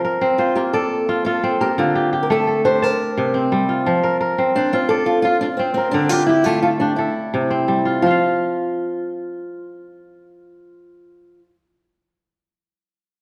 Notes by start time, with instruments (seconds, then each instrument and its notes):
Already playing: kora F3 C4 D4 F4
0.05 kora A#4
0.21 kora C4
0.38 steel-string acoustic guitar F4, kora C5
0.55 kora A#3 F4, steel-string acoustic guitar G4
0.73 steel-string acoustic guitar A4, kora D5
1.09 kora F4
1.25 kora F4, steel-string acoustic guitar A4
1.44 kora C4
1.61 steel-string acoustic guitar G4, kora A#4
1.78 kora D3, steel-string acoustic guitar F4
1.95 kora G4
2.13 kora G4
2.23 steel-string acoustic guitar A#4
2.30 kora A3, steel-string acoustic guitar A4
2.47 kora A4
2.65 kora D4 G4, steel-string acoustic guitar C5
2.82 steel-string acoustic guitar A#4, kora A5
3.17 kora C3
3.34 kora C4
3.52 kora G3
3.69 kora F4
3.86 kora F3
4.03 kora A#4
4.21 kora A#4
4.38 kora C4
4.56 steel-string acoustic guitar D4, kora C5
4.73 steel-string acoustic guitar C4, kora F4
4.89 steel-string acoustic guitar A4, kora D5
5.06 steel-string acoustic guitar F4
5.22 steel-string acoustic guitar F4, kora F4
5.41 steel-string acoustic guitar D4, kora F4
5.57 steel-string acoustic guitar C4, kora C4
5.74 steel-string acoustic guitar C4, kora A#4
5.91 kora D3, steel-string acoustic guitar D4
6.09 steel-string acoustic guitar F4, kora G4
6.26 steel-string acoustic guitar E4, kora G4
6.44 kora A3, steel-string acoustic guitar F4
6.62 steel-string acoustic guitar F4, kora A4
6.80 steel-string acoustic guitar D4, kora D4 G4
6.96 steel-string acoustic guitar E4, kora A4
7.34 kora C3
7.51 kora C4
7.68 kora G3
7.85 kora F4
8.02 kora F3, steel-string acoustic guitar F4
8.06 kora F4
8.11 kora F5